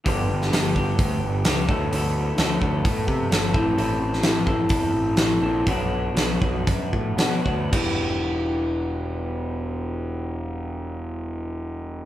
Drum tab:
CC |----------------|----------------|----------------|----------------|
HH |o---o---o---o---|o---o---o---o---|o---o---o---o---|o---o---o---o---|
SD |---oo-------o---|----o-------o---|---oo-------o---|----o-------o---|
BD |o-----o-o-----o-|------o-o-o---o-|------o-o-------|o-----o-o-o---o-|

CC |x---------------|----------------|
HH |----------------|----------------|
SD |----------------|----------------|
BD |o---------------|----------------|